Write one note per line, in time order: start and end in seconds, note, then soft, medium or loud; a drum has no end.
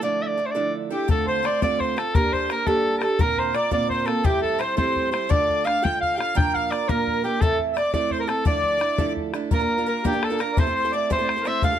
0.01 0.42 D3 medium
0.01 0.38 F3 medium
0.01 0.37 A3 medium
0.01 0.37 D4 medium
0.01 0.37 E4 medium
0.01 0.39 A4 medium
0.01 0.24 D5 medium
0.22 0.28 E5 medium
0.27 0.47 D5 medium
0.37 0.55 A3 medium
0.37 0.54 D4 medium
0.37 0.54 E4 medium
0.37 0.54 A4 medium
0.46 0.52 C5 medium
0.51 0.90 A4 medium
0.51 0.74 D5 medium
0.55 0.94 D3 medium
0.55 0.91 F3 medium
0.55 0.92 A3 medium
0.55 0.91 D4 medium
0.55 0.90 E4 medium
0.90 1.07 A3 soft
0.90 1.08 D4 medium
0.90 1.08 E4 medium
0.90 1.09 G4 medium
0.90 1.08 G4 medium
0.90 1.08 A4 medium
1.08 1.47 D3 medium
1.08 1.42 A3 medium
1.08 1.43 C4 medium
1.08 1.43 F4 medium
1.08 1.25 A4 medium
1.08 1.44 A4 medium
1.08 1.26 A4 medium
1.08 bodhran medium
1.26 1.62 C5 medium
1.26 1.47 C5 medium
1.26 bodhran soft
1.43 1.61 A3 medium
1.43 1.61 C4 medium
1.43 1.61 F4 medium
1.43 1.61 A4 medium
1.43 1.62 D5 medium
1.43 bodhran medium
1.61 2.02 D3 medium
1.61 1.97 A3 medium
1.61 1.97 C4 medium
1.61 1.96 F4 medium
1.61 1.95 A4 medium
1.61 1.79 D5 medium
1.61 1.82 D5 medium
1.61 bodhran medium
1.79 1.95 C5 medium
1.79 2.00 C5 medium
1.79 bodhran soft
1.96 2.15 C4 soft
1.96 2.14 F4 medium
1.96 2.14 A4 medium
1.96 2.15 A4 medium
1.96 2.17 A4 medium
1.96 bodhran medium
2.14 2.50 G3 medium
2.14 2.48 A#3 medium
2.14 2.49 D4 medium
2.14 2.49 G4 medium
2.14 2.50 A4 medium
2.14 2.32 A#4 medium
2.14 2.34 A#4 medium
2.14 bodhran medium
2.32 2.50 C5 medium
2.32 bodhran soft
2.49 2.66 A#3 medium
2.49 2.66 D4 medium
2.49 2.66 G4 medium
2.49 2.65 A4 medium
2.49 2.66 A#4 medium
2.49 2.69 A#4 medium
2.49 bodhran medium
2.66 3.02 G3 medium
2.66 3.02 A#3 medium
2.66 3.02 D4 medium
2.66 3.01 G4 medium
2.66 3.02 A4 medium
2.66 3.00 A4 medium
2.66 2.97 A4 medium
2.66 bodhran medium
2.98 3.19 A4 medium
2.98 3.04 A#4 medium
2.98 bodhran medium
3.02 3.20 D4 soft
3.02 3.19 G4 soft
3.02 3.23 A4 medium
3.02 3.21 A4 medium
3.19 3.54 A#2 medium
3.19 3.54 D3 medium
3.19 3.53 A#3 medium
3.19 3.53 C4 medium
3.19 3.54 F4 medium
3.19 3.56 A#4 medium
3.19 3.54 A#4 medium
3.19 3.40 A#4 loud
3.19 bodhran medium
3.37 3.57 C5 medium
3.37 bodhran soft
3.54 3.71 A#3 medium
3.54 3.71 C4 medium
3.54 3.70 F4 medium
3.54 3.70 A#4 medium
3.54 3.72 D5 medium
3.54 bodhran medium
3.71 4.08 A#2 medium
3.71 4.07 D3 medium
3.71 4.06 A#3 medium
3.71 4.06 C4 medium
3.71 4.06 F4 medium
3.71 4.04 A#4 medium
3.71 3.89 D5 loud
3.71 3.89 D5 medium
3.71 bodhran medium
3.89 4.06 C5 medium
3.89 4.08 C5 medium
3.89 bodhran soft
4.06 4.24 A#3 soft
4.06 4.23 C4 soft
4.06 4.25 F4 soft
4.06 4.27 A4 medium
4.06 4.24 A4 medium
4.06 4.24 A#4 medium
4.06 bodhran medium
4.24 4.59 A2 medium
4.24 4.60 E3 medium
4.24 4.57 G3 medium
4.24 4.58 C4 medium
4.24 4.58 E4 medium
4.24 4.41 G4 medium
4.24 4.41 G4 loud
4.24 4.59 A4 medium
4.24 bodhran medium
4.41 4.60 A4 medium
4.41 4.62 A4 medium
4.41 bodhran soft
4.58 4.76 G3 medium
4.58 4.76 C4 medium
4.58 4.76 E4 medium
4.58 4.76 A4 medium
4.58 4.75 C5 medium
4.58 4.76 C5 medium
4.58 bodhran medium
4.77 5.13 A2 medium
4.77 5.13 E3 medium
4.77 5.13 G3 medium
4.77 5.11 C4 medium
4.77 5.11 E4 medium
4.77 5.10 A4 medium
4.77 5.10 C5 medium
4.77 bodhran medium
4.96 bodhran soft
5.11 5.29 G3 soft
5.11 5.29 C4 soft
5.11 5.29 E4 soft
5.11 5.29 A4 medium
5.11 5.30 C5 medium
5.11 5.32 C5 medium
5.11 bodhran medium
5.29 5.65 D3 medium
5.29 5.63 A3 medium
5.29 5.63 D4 medium
5.29 5.64 F4 medium
5.29 5.65 A4 medium
5.29 5.63 D5 medium
5.29 5.67 D5 loud
5.29 bodhran medium
5.50 bodhran soft
5.64 5.82 A3 medium
5.64 5.82 D4 medium
5.64 5.81 F4 medium
5.64 5.81 A4 medium
5.64 5.83 F5 medium
5.64 5.85 F5 loud
5.64 bodhran medium
5.82 6.18 D3 medium
5.82 6.19 A3 medium
5.82 6.18 D4 medium
5.82 6.17 F4 medium
5.82 6.16 A4 medium
5.82 6.00 G5 medium
5.82 6.01 G5 medium
5.82 bodhran medium
6.01 6.17 F5 medium
6.01 6.15 F5 medium
6.01 bodhran soft
6.14 6.35 A4 medium
6.14 6.18 G5 medium
6.18 6.34 D4 soft
6.18 6.34 F4 soft
6.18 6.35 F5 loud
6.18 6.37 F5 medium
6.18 bodhran medium
6.35 6.70 A#2 medium
6.35 6.71 F3 medium
6.35 6.69 A#3 medium
6.35 6.71 D4 medium
6.35 6.71 F4 medium
6.35 6.71 A#4 medium
6.35 6.57 G5 loud
6.35 6.53 G5 medium
6.35 bodhran medium
6.53 6.71 F5 medium
6.53 6.73 F5 loud
6.53 bodhran soft
6.71 6.88 A#3 medium
6.71 6.88 D4 medium
6.71 6.88 F4 medium
6.71 6.88 A#4 medium
6.71 6.89 D5 medium
6.71 6.90 D5 medium
6.71 bodhran medium
6.89 7.24 A#2 medium
6.89 7.24 F3 medium
6.89 7.24 A#3 medium
6.89 7.24 D4 medium
6.89 7.23 F4 medium
6.89 7.25 A#4 medium
6.89 7.24 A#4 medium
6.89 7.22 A#4 medium
6.89 bodhran medium
7.07 bodhran soft
7.24 7.42 A#3 soft
7.24 7.42 D4 soft
7.24 7.42 F4 medium
7.24 7.42 G4 medium
7.24 7.40 G4 medium
7.24 7.41 A#4 medium
7.41 7.76 A2 medium
7.41 7.77 E3 medium
7.41 7.75 A3 medium
7.41 7.76 C4 medium
7.41 7.76 E4 medium
7.41 7.59 A4 loud
7.41 7.58 A4 medium
7.41 7.77 A4 medium
7.41 bodhran medium
7.59 bodhran soft
7.73 7.93 A3 medium
7.73 7.77 E5 medium
7.73 bodhran medium
7.77 7.93 C4 medium
7.77 7.93 E4 medium
7.77 7.92 A4 medium
7.77 7.93 D5 medium
7.94 8.30 A2 medium
7.94 8.30 E3 medium
7.94 8.28 A3 medium
7.94 8.28 C4 medium
7.94 8.27 E4 medium
7.94 8.26 A4 medium
7.94 8.13 D5 loud
7.94 8.10 D5 medium
7.94 bodhran medium
8.11 8.20 C5 medium
8.11 8.19 C5 medium
8.11 bodhran soft
8.20 8.28 A#4 medium
8.20 8.30 A#4 medium
8.27 8.45 A3 soft
8.27 8.45 C4 soft
8.27 8.44 E4 soft
8.27 8.45 A4 medium
8.27 8.46 A4 medium
8.27 8.47 A4 medium
8.27 bodhran medium
8.45 8.81 D3 medium
8.45 8.81 F3 medium
8.45 8.78 A3 medium
8.45 8.78 D4 medium
8.45 8.79 E4 medium
8.45 8.80 A4 medium
8.45 9.13 D5 loud
8.45 9.13 D5 medium
8.45 bodhran medium
8.63 bodhran soft
8.79 8.98 A3 medium
8.79 8.98 D4 medium
8.79 8.97 E4 medium
8.79 8.97 A4 medium
8.79 bodhran medium
8.98 9.35 D3 medium
8.98 9.35 F3 medium
8.98 9.34 A3 medium
8.98 9.34 D4 medium
8.98 9.33 E4 medium
8.98 9.32 A4 medium
8.98 bodhran medium
9.17 bodhran soft
9.34 9.51 A3 soft
9.34 9.51 D4 medium
9.34 9.51 E4 medium
9.34 9.52 A4 medium
9.34 bodhran medium
9.51 9.60 A#2 medium
9.51 9.60 F3 medium
9.51 9.60 A#3 medium
9.51 9.60 D4 medium
9.51 9.59 F4 medium
9.51 9.62 A#4 medium
9.51 9.58 A#4 medium
9.51 9.85 A#4 medium
9.51 bodhran medium
9.60 9.78 A#3 soft
9.60 9.78 D4 soft
9.60 9.77 F4 soft
9.60 9.76 A#4 soft
9.60 9.74 A#4 medium
9.75 9.85 A#3 soft
9.75 9.86 D4 soft
9.75 9.86 F4 soft
9.75 9.84 A#4 medium
9.75 9.87 A#4 soft
9.85 10.04 A#3 medium
9.85 10.04 D4 medium
9.85 10.04 F4 medium
9.85 10.04 A#4 medium
10.04 10.13 A#2 medium
10.04 10.13 F3 medium
10.04 10.13 A#3 medium
10.04 10.12 D4 medium
10.04 10.12 F4 medium
10.04 10.22 G4 medium
10.04 10.25 G4 medium
10.04 10.11 A#4 medium
10.04 bodhran medium
10.12 10.31 A#3 soft
10.12 10.30 D4 soft
10.12 10.30 F4 medium
10.12 10.29 A#4 soft
10.21 10.40 A4 medium
10.21 10.43 A4 medium
10.21 bodhran medium
10.30 10.37 A#3 soft
10.30 10.39 D4 soft
10.30 10.39 F4 medium
10.30 10.39 A#4 medium
10.39 10.57 A#3 medium
10.39 10.57 D4 medium
10.39 10.58 F4 medium
10.39 10.52 A#4 medium
10.39 10.58 A#4 medium
10.39 10.61 A#4 medium
10.39 bodhran medium
10.53 10.66 A2 medium
10.53 10.57 D5 medium
10.57 10.66 E3 medium
10.57 10.66 A3 medium
10.57 10.66 C4 medium
10.57 10.66 E4 medium
10.57 10.65 A4 medium
10.57 10.73 C5 medium
10.57 10.93 C5 loud
10.57 bodhran medium
10.67 10.85 A3 soft
10.67 10.85 C4 soft
10.67 10.84 E4 medium
10.67 10.83 A4 medium
10.75 10.91 C5 medium
10.84 10.92 A3 soft
10.84 10.92 C4 soft
10.84 10.93 E4 medium
10.84 10.93 A4 medium
10.92 11.09 A3 medium
10.92 11.10 C4 medium
10.92 11.10 E4 medium
10.92 11.10 A4 medium
10.92 11.08 D5 medium
10.92 11.10 D5 medium
11.10 11.19 A2 medium
11.10 11.19 E3 medium
11.10 11.19 A3 medium
11.10 11.19 C4 medium
11.10 11.18 E4 medium
11.10 11.17 A4 medium
11.10 11.24 C5 medium
11.10 11.49 C5 loud
11.10 bodhran medium
11.19 11.37 A3 soft
11.19 11.37 C4 soft
11.19 11.36 E4 medium
11.19 11.35 A4 medium
11.24 11.28 D5 medium
11.28 11.41 C5 medium
11.28 bodhran medium
11.36 11.44 A3 soft
11.36 11.45 C4 soft
11.36 11.46 E4 medium
11.36 11.45 A4 medium
11.41 11.62 A3 medium
11.41 11.45 A#4 medium
11.46 11.63 C4 medium
11.46 11.64 E4 medium
11.46 11.63 A4 medium
11.46 11.63 C5 medium
11.46 11.64 E5 medium
11.46 bodhran medium
11.62 11.72 D3 medium
11.62 11.72 A3 medium
11.62 11.72 D4 medium
11.62 11.72 F4 medium
11.62 11.71 A4 medium
11.62 11.79 F5 medium
11.62 11.79 F5 loud
11.62 bodhran medium
11.72 11.79 D4 soft
11.72 11.79 F4 soft
11.72 11.79 A4 medium